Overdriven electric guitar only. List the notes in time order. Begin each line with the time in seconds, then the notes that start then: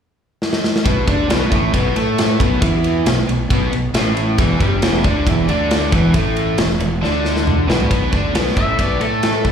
0.85 B2 B3
1.07 D3 D4
1.29 B2 B3
1.51 A2 A3
1.73 B2 B3
1.95 A3 A4
2.40 B2 B3
2.61 E3 E4
3.07 B2
3.28 B2
3.50 B2 B3
3.72 B2
3.94 A2 A3
4.38 E2 E3
4.60 G2 G3
4.83 E2 E3
5.04 D3 D4
5.26 E2 E3
5.48 D3 D4
5.92 E2 E3
6.13 A2 A3
6.58 E2
6.80 E2
7.02 D3 D4
7.68 B2 B3
7.90 B2 B3
8.12 D3 D4
8.34 B2 B3
8.56 A2 A3
8.79 B2 B3
9.01 A3 A4
9.45 B2 B3